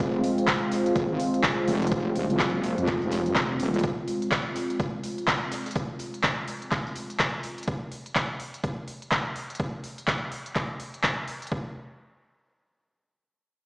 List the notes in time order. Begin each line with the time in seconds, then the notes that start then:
Already playing: G#3 C4 F4
0.00 F1, kick, closed hi-hat
0.24 closed hi-hat, open hi-hat
0.38 closed hi-hat
0.47 kick, snare, clap, closed hi-hat
0.71 snare, closed hi-hat, open hi-hat
0.86 closed hi-hat
0.96 F1, kick, closed hi-hat
1.10 G#1
1.20 closed hi-hat, open hi-hat
1.34 closed hi-hat
1.43 kick, snare, clap, closed hi-hat
1.68 F1, snare, closed hi-hat, open hi-hat
1.82 snare, closed hi-hat
1.87 closed hi-hat
1.92 kick, closed hi-hat
2.15 D#1, closed hi-hat, open hi-hat
2.30 F#1, closed hi-hat
2.39 kick, snare, clap, closed hi-hat
2.64 closed hi-hat, open hi-hat
2.78 F2, closed hi-hat
2.87 kick, clap, closed hi-hat
3.02 F1, closed hi-hat
3.11 snare, closed hi-hat, open hi-hat
3.26 closed hi-hat
3.35 F1, kick, snare, clap, closed hi-hat
3.60 D#1, closed hi-hat, open hi-hat
3.74 closed hi-hat
3.79 closed hi-hat
3.83 kick, closed hi-hat
4.08 closed hi-hat, open hi-hat
4.22 closed hi-hat
4.31 kick, snare, clap, closed hi-hat
4.55 snare, closed hi-hat, open hi-hat
4.70 closed hi-hat
4.80 kick, closed hi-hat
5.03 closed hi-hat, open hi-hat
5.18 closed hi-hat
5.27 kick, snare, clap, closed hi-hat
5.51 snare, closed hi-hat, open hi-hat
5.66 snare, closed hi-hat
5.71 closed hi-hat
5.75 kick, closed hi-hat
5.99 closed hi-hat, open hi-hat
6.14 closed hi-hat
6.23 kick, snare, clap, closed hi-hat
6.48 closed hi-hat, open hi-hat
6.62 closed hi-hat
6.71 kick, clap, closed hi-hat
6.87 closed hi-hat
6.96 closed hi-hat, open hi-hat
7.10 closed hi-hat
7.19 kick, snare, clap, closed hi-hat
7.43 closed hi-hat, open hi-hat
7.58 closed hi-hat
7.63 closed hi-hat
7.68 kick, closed hi-hat
7.92 open hi-hat
8.06 closed hi-hat
8.15 kick, clap, closed hi-hat
8.40 open hi-hat
8.54 closed hi-hat
8.64 kick, closed hi-hat
8.88 open hi-hat
9.02 closed hi-hat
9.12 kick, clap, closed hi-hat
9.36 open hi-hat
9.50 closed hi-hat
9.55 closed hi-hat
9.60 kick, closed hi-hat
9.84 open hi-hat
9.98 closed hi-hat
10.08 kick, clap, closed hi-hat
10.32 open hi-hat
10.46 closed hi-hat
10.55 kick, clap, closed hi-hat
10.80 open hi-hat
10.94 closed hi-hat
11.04 kick, clap, closed hi-hat
11.28 open hi-hat
11.42 closed hi-hat
11.47 closed hi-hat
11.52 kick